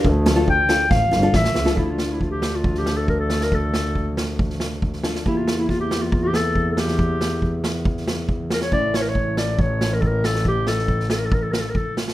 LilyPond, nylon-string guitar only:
\new Staff \with { instrumentName = "Nylon-string guitar" } { \time 4/4 \key d \minor \tempo 4 = 138 r8. <d' f' a'>16 r8 <d' f' a'>16 r4 <d' f' a'>16 r8. <d' f' a'>16 | <d' f' a'>1~ | <d' f' a'>2.~ <d' f' a'>8 <d' f' a'>8 | <bes e' g'>1~ |
<bes e' g'>1 | <a cis' e'>1~ | <a cis' e'>1 | }